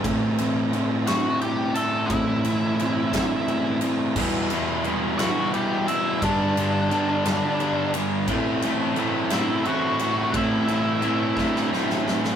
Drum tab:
CC |------------|------------|x-----------|------------|
RD |x-x-x-x-x-x-|x-x-x-x-x-x-|--x-x-x-x-x-|x-x-x-x-x-x-|
SD |------o-----|------o-----|------o-----|------o-----|
BD |o-----------|o-----o-----|o-----------|o-----------|

CC |------------|------------|
RD |x-x-x-x-x-x-|x-x-x-------|
SD |------o-----|------oooooo|
BD |o-----------|o-----o-----|